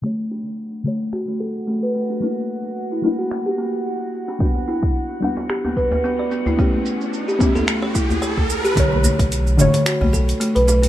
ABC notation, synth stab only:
X:1
M:4/4
L:1/8
Q:"Swing 16ths" 1/4=110
K:Bm
V:1 name="Synth stab"
[D,A,c]3 [D,A,c]4- [D,A,c] | [G,^A,DE]3 [G,A,DE]4- [G,A,DE] | [G,DF]3 [G,Df]4- [G,Df] | [B,CG]3 [B,CG]4- [B,CG] |
[D,A,c]3 [D,A,c]4- [D,A,c] |]